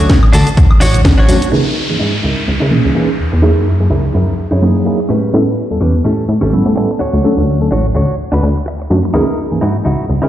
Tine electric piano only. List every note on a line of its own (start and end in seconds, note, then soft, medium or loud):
1.28 1.36 F#3 medium
1.28 1.36 A3 medium
1.28 1.36 C#4 medium
1.28 1.36 D4 medium
1.28 1.37 F#4 loud
1.52 1.60 E3 medium
1.52 1.60 A#3 medium
1.52 1.60 C#4 medium
1.52 1.60 D#4 medium
1.52 1.60 G#4 loud
1.89 1.96 E3 medium
1.89 1.96 A#3 medium
1.89 1.96 C#4 medium
1.89 1.96 D#4 medium
1.89 1.96 G#4 medium
2.71 2.92 E3 medium
2.71 2.93 A#3 medium
2.71 2.93 C#4 medium
2.71 2.93 D#4 medium
2.71 2.93 G#4 medium
2.95 3.08 E3 medium
2.95 3.08 A#3 medium
2.95 3.08 C#4 medium
2.95 3.08 D#4 medium
2.95 3.08 G#4 medium
3.42 3.51 F#3 medium
3.42 3.51 A#3 medium
3.42 3.51 D#4 medium
3.42 3.51 E4 medium
3.42 3.51 G#4 medium
3.80 3.86 F#3 medium
3.80 3.86 A#3 medium
3.80 3.86 D#4 medium
3.80 3.86 E4 medium
3.80 3.87 G#4 medium
4.61 4.83 F#3 medium
4.61 4.83 A#3 medium
4.61 4.83 D#4 medium
4.61 4.83 E4 medium
4.61 4.84 G#4 medium
4.86 4.98 F#3 medium
4.86 4.98 A#3 medium
4.86 4.99 D#4 medium
4.86 4.99 E4 medium
4.86 4.99 G#4 medium
5.33 5.41 G3 medium
5.33 5.42 B3 medium
5.33 5.42 C#4 medium
5.33 5.42 E4 medium
5.33 5.42 A4 loud
5.71 5.77 G3 medium
5.71 5.77 B3 medium
5.71 5.77 C#4 medium
5.71 5.77 E4 medium
5.71 5.77 A4 medium
6.53 6.74 G3 medium
6.53 6.74 B3 medium
6.53 6.74 C#4 medium
6.53 6.74 E4 medium
6.53 6.74 A4 medium
6.76 6.89 G3 medium
6.76 6.89 B3 medium
6.76 6.89 C#4 medium
6.76 6.89 E4 medium
6.76 6.89 A4 medium
7.24 7.32 F#3 medium
7.24 7.32 A3 medium
7.24 7.32 C#4 medium
7.24 7.32 D4 medium
7.24 7.32 A4 medium
7.61 7.67 F#3 medium
7.61 7.67 A3 medium
7.61 7.67 C#4 medium
7.61 7.67 D4 medium
7.61 7.68 A4 medium
8.90 8.98 F#3 medium
8.90 8.98 A3 medium
8.90 8.98 C#4 medium
8.90 8.99 D4 medium
8.90 8.99 F#4 medium
9.14 9.22 E3 medium
9.14 9.22 A#3 medium
9.14 9.22 C#4 medium
9.14 9.23 D#4 medium
9.14 9.23 G#4 medium
9.51 9.58 E3 medium
9.51 9.58 A#3 medium
9.51 9.58 C#4 medium
9.51 9.58 D#4 medium
9.51 9.58 G#4 medium